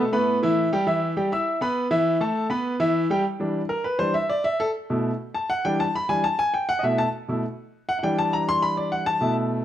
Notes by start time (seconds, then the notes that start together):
0.12 A2 A3 B3 B4 B5
0.43 E3 E4 E5
0.73 G3 G4 G5
0.87 E3 E4 E5
1.17 G3 G4 G5
1.32 E4 E5 E6
1.61 B3 B4 B5
1.91 E3 E4 E5
2.21 A3 A4 A5
2.50 B3 B4 B5
2.80 E3 E4 E5
3.10 G3 G4 G5
3.40 E3 G3 D4
3.69 A#4
3.84 B4
3.99 E3 G3 D4 C5
4.14 E5
4.30 D5
4.44 E5
4.60 A4
4.90 B2 A3 E4
5.34 A5
5.50 F#5
5.65 E3 G3 D4 G5
5.80 A5
5.95 B5
6.09 E3 G3 D4 G#5
6.24 A5
6.39 G#5
6.54 G5
6.69 F#5
6.79 D#5
6.83 B2 A3 E4 E5
6.98 A5
7.28 B2 A3 E4
7.89 F#5
7.99 E3 F#5
8.03 G3 D4 G5
8.18 A5
8.33 A#5
8.49 C6
8.62 B5
8.77 D5
8.92 F#5
9.06 A5
9.21 B2 A3 E4